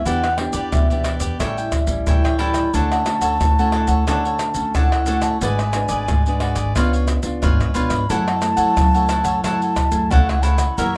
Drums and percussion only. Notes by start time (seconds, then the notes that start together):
0.06 pandeiro, maracas, surdo
0.24 pandeiro, tamborim, maracas
0.38 pandeiro, tamborim
0.53 pandeiro, maracas
0.73 pandeiro, tamborim, maracas, surdo
0.91 pandeiro, maracas
1.04 pandeiro, tamborim, maracas
1.20 pandeiro, maracas
1.40 pandeiro, tamborim, maracas, surdo
1.58 pandeiro, maracas
1.72 pandeiro, tamborim, maracas, surdo
1.87 pandeiro, maracas
2.07 pandeiro, tamborim, maracas, surdo
2.25 pandeiro, tamborim, maracas
2.39 pandeiro
2.54 pandeiro, tamborim, maracas
2.74 pandeiro, maracas, surdo
2.92 pandeiro, tamborim, maracas
3.06 pandeiro, tamborim, maracas
3.21 pandeiro, maracas
3.41 pandeiro, tamborim, maracas, surdo
3.59 pandeiro, maracas
3.72 pandeiro, tamborim
3.87 pandeiro, maracas
4.08 pandeiro, tamborim, maracas, surdo
4.25 pandeiro, maracas
4.39 pandeiro, tamborim, maracas
4.54 pandeiro, maracas
4.75 pandeiro, tamborim, maracas, surdo
4.92 pandeiro, tamborim, maracas
5.06 pandeiro, maracas
5.22 pandeiro, tamborim, maracas
5.41 pandeiro, maracas, surdo
5.59 pandeiro, tamborim, maracas
5.73 pandeiro, tamborim, maracas
5.89 pandeiro, maracas
6.08 pandeiro, tamborim, maracas, surdo
6.26 pandeiro, maracas
6.40 pandeiro, tamborim
6.56 pandeiro, maracas
6.76 pandeiro, tamborim, maracas, surdo
6.93 pandeiro, maracas
7.08 pandeiro, tamborim, maracas
7.23 pandeiro, maracas
7.43 pandeiro, tamborim, maracas, surdo
7.61 pandeiro, tamborim, maracas
7.75 pandeiro, maracas
7.90 pandeiro, tamborim, maracas
8.10 pandeiro, maracas, surdo
8.28 pandeiro, tamborim, maracas
8.42 pandeiro, tamborim, maracas
8.57 pandeiro, maracas
8.77 pandeiro, tamborim, maracas, surdo
8.95 pandeiro, maracas
9.09 pandeiro, tamborim, maracas
9.25 pandeiro, maracas
9.44 pandeiro, tamborim, maracas, surdo
9.62 pandeiro, maracas
9.76 pandeiro, tamborim, maracas, surdo
9.92 pandeiro, maracas
10.11 pandeiro, tamborim, maracas, surdo
10.29 pandeiro, tamborim, maracas
10.43 pandeiro, maracas
10.58 pandeiro, tamborim, maracas
10.78 pandeiro, maracas, surdo